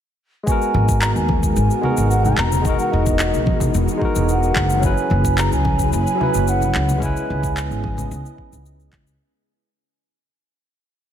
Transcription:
0.43 tine electric piano G#3 B3, string machine G#3 A#4, flute G#5, kick
0.47 string machine B3 D#4 F#4, tine electric piano F#4, cabasa
0.52 tine electric piano A#4
0.62 cabasa
0.74 upright bass G#1, high conga
0.89 kick, cabasa
1.00 flute A#5, clap, cabasa
1.15 upright bass D#2, flute G#5, cabasa
1.28 kick, high conga
1.43 kick, cabasa
1.54 upright bass G#1, flute G#5, cabasa
1.70 cabasa
1.81 tine electric piano G#3 B3 F#4 A#4, low conga
1.97 upright bass G#1, cabasa
2.10 flute F#5, cabasa
2.24 flute A#5, high conga, low conga, cabasa
2.38 upright bass E1, string machine E3 B3 G#4, clap
2.52 low conga, cabasa
2.61 tine electric piano G#3 D#4, flute D#5, kick, cabasa
2.67 tine electric piano F#4 A#4
2.79 flute F#5, cabasa
2.92 upright bass E1, flute D#5
3.06 kick, cabasa
3.19 clap, cabasa
3.34 upright bass B1, cabasa
3.46 kick, high conga
3.60 kick, low conga, cabasa
3.74 upright bass E1, cabasa
3.88 cabasa
3.97 tine electric piano G#3 D#4
4.02 tine electric piano F#4 A#4, kick
4.16 upright bass E1, cabasa
4.29 flute F#5, cabasa
4.43 cabasa
4.56 upright bass F#1, kick, clap
4.70 cabasa
4.79 tine electric piano F#3 C#4, string machine B4
4.83 string machine F#3 C#4 E4, tine electric piano E4 B4, flute G#5, kick, cabasa
4.98 cabasa
5.10 upright bass F#1, high conga
5.25 kick, cabasa
5.38 flute A#5, clap, cabasa
5.52 upright bass C#2, flute G#5, cabasa
5.65 kick, high conga
5.79 kick, cabasa
5.93 upright bass F#1, flute G#5, cabasa
6.07 cabasa
6.15 tine electric piano F#3 C#4
6.20 tine electric piano E4 B4, low conga
6.34 upright bass F#1, cabasa
6.48 flute F#5, cabasa
6.61 high conga, low conga, cabasa
6.75 upright bass C#2, clap
6.89 low conga, cabasa
6.98 tine electric piano G#3 C#4
7.02 string machine C#3 G#3 B3 D#5, tine electric piano E4 B4, flute G#5, kick, cabasa
7.17 cabasa
7.30 upright bass C#2
7.43 kick, cabasa
7.57 clap, cabasa
7.71 upright bass G#1, cabasa
7.83 kick, high conga
7.97 kick, low conga, cabasa
8.11 upright bass C#2, cabasa
8.26 cabasa
8.38 kick
8.53 upright bass C#2, cabasa
8.66 cabasa
8.80 cabasa
8.93 upright bass C#2, kick, clap
9.07 cabasa

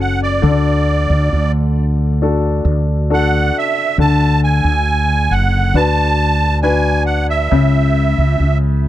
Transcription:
Already playing: fretless electric bass F#1, grand piano F#3 C#4 F#4 A4
0.01 accordion F#5
0.23 accordion D5
0.42 fretless electric bass D2, grand piano D3
1.10 fretless electric bass D2
1.33 fretless electric bass D2
2.22 grand piano D4 F#4 A4
2.65 fretless electric bass D2
3.10 grand piano D4 F#4 A4, accordion F#5
3.58 accordion E5
3.98 fretless electric bass D2, grand piano D3, accordion A5
4.44 accordion G#5
4.64 fretless electric bass D2
5.30 fretless electric bass F#1, accordion F#5
5.74 fretless electric bass D2, grand piano D4 F#4 B4, accordion A5
6.62 grand piano D4 F#4 B4, accordion G#5
7.06 accordion F#5
7.30 accordion E5
7.51 fretless electric bass C#2, grand piano C#3
8.18 fretless electric bass C#2
8.40 fretless electric bass C#2

